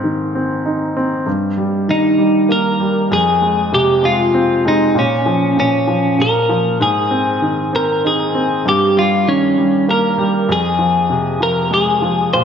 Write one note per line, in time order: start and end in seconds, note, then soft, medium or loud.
0.00 1.22 G#2 medium
0.00 1.23 D#3 soft
0.00 0.34 C4 soft
0.35 0.95 C4 soft
0.66 1.25 D#4 soft
0.97 1.26 C4 soft
1.26 3.07 G2 soft
1.58 2.17 G3 soft
1.88 3.07 D#3 soft
1.88 2.53 D#4 medium
2.18 2.79 G3 soft
2.49 3.09 A#3 soft
2.49 3.08 A#4 medium
2.80 3.10 G3 soft
3.11 4.91 F2 medium
3.11 3.74 G#4 medium
3.42 4.01 G#3 soft
3.72 4.92 C3 soft
3.72 4.05 G4 medium
4.03 4.64 G#3 soft
4.03 4.68 F4 medium
4.34 4.94 C4 soft
4.65 4.95 G#3 soft
4.65 4.98 D#4 medium
4.95 5.55 A#2 medium
4.95 5.59 C#4 medium
5.26 5.86 F3 soft
5.57 6.17 A#2 soft
5.57 6.22 C#4 medium
5.87 6.48 F3 soft
6.19 6.78 A#2 soft
6.19 6.77 A#4 medium
6.49 6.79 F3 soft
6.80 8.60 G#2 medium
6.80 7.75 G#4 medium
7.11 7.72 C4 soft
7.42 8.61 D#3 soft
7.73 8.33 C4 soft
7.73 8.05 A#4 medium
8.05 8.63 D#4 soft
8.05 8.68 G#4 medium
8.35 8.64 C4 soft
8.65 10.45 G2 medium
8.65 8.98 G4 medium
8.97 9.56 G3 soft
8.97 9.29 F4 medium
9.27 10.46 D#3 soft
9.27 9.85 C#4 medium
9.58 10.17 G3 soft
9.88 10.48 A#3 soft
9.88 10.52 A#4 medium
10.18 10.48 G3 soft
10.49 12.29 F2 medium
10.49 11.43 G#4 medium
10.79 11.39 F3 soft
11.10 12.29 C3 soft
11.40 12.00 F3 soft
11.40 11.73 A#4 medium
11.71 12.31 G#3 soft
11.71 12.33 G#4 medium
12.02 12.32 F3 soft
12.34 12.44 A#2 medium
12.34 12.42 C5 medium